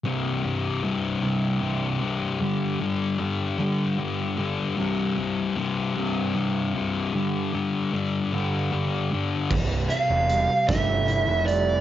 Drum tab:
CC |------|------|------|------|
HH |------|------|------|------|
SD |------|------|------|------|
BD |------|------|------|------|

CC |x-----|
HH |-xxxxx|
SD |---o--|
BD |o--o--|